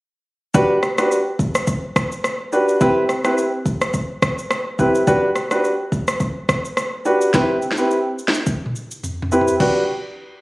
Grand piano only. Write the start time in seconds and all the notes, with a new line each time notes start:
0.54 D4 F#4 G4 B4
0.98 D4 F#4 G4 B4
2.52 D4 F#4 G4 B4
2.81 C4 E4 G4 B4
3.24 C4 E4 G4 B4
4.79 C4 E4 G4 B4
5.07 D4 F#4 G4 B4
5.51 D4 F#4 G4 B4
7.05 D4 F#4 G4 B4
7.33 C4 E4 G4 B4
7.77 C4 E4 G4 B4
9.32 C4 E4 G4 B4
9.60 D4 F#4 G4 B4